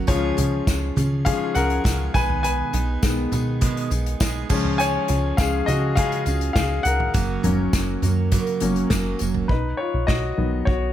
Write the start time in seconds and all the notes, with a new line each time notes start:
Already playing: F#3 A#3 C#4
0.07 C#2 C#3 F3 G#3 C#4 F4 G#4 C#5, kick, closed hi-hat, tambourine
0.37 C#2 C#4 F4 G#4, closed hi-hat, floor tom, tambourine
0.67 C#2, kick, snare, closed hi-hat, tambourine
0.96 C#3 C#4 F4 G#4, closed hi-hat, floor tom, tambourine
1.25 C#3 F3 G#3 C#4 F4 G#4 F5, kick, closed hi-hat, tambourine
1.55 C#2 C#4 F4 G#4 A#4 F#5, closed hi-hat, tambourine
1.70 closed hi-hat
1.84 C#2 G#3 C#4 F4 G#4, kick, snare, closed hi-hat, tambourine
2.14 B1 B2 D#3 G#3 B3 D#4 G#4 B4 G#5, kick, closed hi-hat, tambourine
2.30 floor tom
2.43 B4 G#5, closed hi-hat, tambourine
2.73 B1 G#3 B3 D#4 G#4, closed hi-hat
3.02 B1 D#3 G#3 B3, kick, snare, closed hi-hat, tambourine
3.32 B2 G#3 B3 D#4 G#4, closed hi-hat, floor tom, tambourine
3.61 B2 D#3 G#3 B3 D#4 G#4, kick, closed hi-hat
3.77 closed hi-hat
3.90 B1 G#3 B3 D#4 G#4, closed hi-hat, tambourine
4.06 closed hi-hat
4.20 B1 G#3 B3 D#4 G#4, kick, snare, closed hi-hat, tambourine
4.49 C#2 C#3 F3 G#3 C#4 F4 G#4, kick, tambourine, crash
4.65 floor tom
4.78 C#5 G#5, closed hi-hat, tambourine
5.08 C#2 C#4 F4 G#4, closed hi-hat, tambourine
5.37 C#2 F3 G#3 C#4 G#4 F5, kick, snare, closed hi-hat, tambourine
5.66 C#3 C#4 F4 F#4 G#4 D#5, closed hi-hat, floor tom, tambourine
5.96 C#3 G#3 C#4 F4 G#4 F5, kick, closed hi-hat
6.12 closed hi-hat
6.26 C#2 C#4 F4 G#4, closed hi-hat, tambourine
6.41 closed hi-hat
6.53 C#2 G#3 C#4 F4 G#4 F5, kick, snare, closed hi-hat, tambourine
6.57 G#4
6.83 C#2 A#4 F#5, closed hi-hat, tambourine
7.00 floor tom
7.14 F#1 F#2 C#3 F#3 A#3 C#4 A#4, kick, closed hi-hat, tambourine
7.43 F#1 F#3 A#3 C#4 A#4, closed hi-hat, floor tom, tambourine
7.73 F#1, kick, snare, closed hi-hat, tambourine
8.02 F#2 F#3 A#3 C#4 A#4, closed hi-hat, floor tom, tambourine
8.32 F#2 C#3 F#3 A#3 C#4 A#4, kick, closed hi-hat, tambourine
8.47 closed hi-hat
8.60 F#1 F#3 A#3 C#4 A#4, closed hi-hat, tambourine
8.76 closed hi-hat
8.90 F#1 F#3 A#3 C#4 A#4, kick, snare, closed hi-hat, tambourine
9.19 F#1 F#3 A#3 C#4 A#4, closed hi-hat, tambourine
9.35 floor tom
9.48 B1 D#4 B4, kick
9.77 F4 C#5
9.94 B1
10.07 B1 F#4 D#5, kick, snare
10.37 B1 D#3 F#3 B3
10.65 B1 F#4 C#5, kick